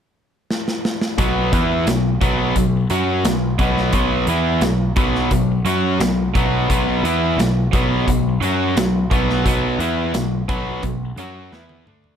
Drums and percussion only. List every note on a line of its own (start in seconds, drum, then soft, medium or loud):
0.51 snare medium
0.68 snare medium
0.85 snare medium
1.01 snare medium
1.18 kick loud
1.18 closed hi-hat medium
1.53 kick loud
1.53 closed hi-hat medium
1.87 snare loud
1.87 closed hi-hat medium
2.21 kick loud
2.21 closed hi-hat medium
2.56 kick medium
2.56 closed hi-hat medium
2.90 closed hi-hat medium
3.25 snare loud
3.25 closed hi-hat loud
3.59 kick loud
3.59 closed hi-hat medium
3.77 snare soft
3.93 kick medium
3.93 closed hi-hat medium
4.27 closed hi-hat medium
4.61 snare loud
4.61 closed hi-hat medium
4.96 kick loud
4.96 closed hi-hat medium
5.15 snare soft
5.31 kick medium
5.31 closed hi-hat medium
5.66 closed hi-hat medium
6.00 snare loud
6.00 closed hi-hat medium
6.35 kick loud
6.35 closed hi-hat medium
6.70 kick medium
6.70 closed hi-hat medium
7.05 closed hi-hat medium
7.39 snare loud
7.39 closed hi-hat medium
7.73 kick loud
7.73 closed hi-hat medium
8.08 kick medium
8.08 closed hi-hat medium
8.43 closed hi-hat medium
8.77 snare loud
8.77 closed hi-hat medium
9.11 kick loud
9.11 closed hi-hat medium
9.30 snare soft
9.46 kick medium
9.46 closed hi-hat medium
9.80 closed hi-hat medium
10.14 snare loud
10.14 closed hi-hat medium
10.49 kick loud
10.49 closed hi-hat medium
10.83 kick medium
10.83 closed hi-hat medium
11.18 closed hi-hat medium
11.53 snare medium
11.69 high tom medium
11.87 mid tom medium
12.04 floor tom medium